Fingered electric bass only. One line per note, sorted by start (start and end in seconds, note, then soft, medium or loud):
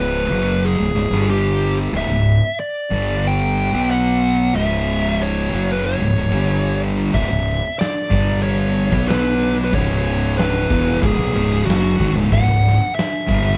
0.00 0.26 C#1 medium
0.31 0.76 F#1 medium
0.80 0.94 C#1 medium
0.94 1.10 C#1 medium
1.11 1.89 G1 loud
1.93 2.08 C#1 medium
2.09 2.39 C#1 medium
2.91 3.69 G1 medium
3.74 4.51 B1 loud
4.55 5.48 C#1 medium
5.53 5.98 F#1 medium
5.99 6.15 C#1 medium
6.17 6.31 C#1 medium
6.32 7.10 G1 medium
7.14 7.30 C#1 medium
7.30 7.61 C#1 medium
8.11 8.89 G1 medium
8.92 9.70 B1 medium
9.74 10.67 C#1 medium
10.70 11.01 E1 medium
11.02 11.17 C#1 loud
11.18 11.33 B1 medium
11.34 11.65 C#1 loud
11.67 11.97 F#1 loud
12.00 12.14 G#1 medium
12.14 12.30 C#1 loud
12.32 12.45 C#1 medium
12.46 12.77 C#1 medium
13.29 13.57 G1 medium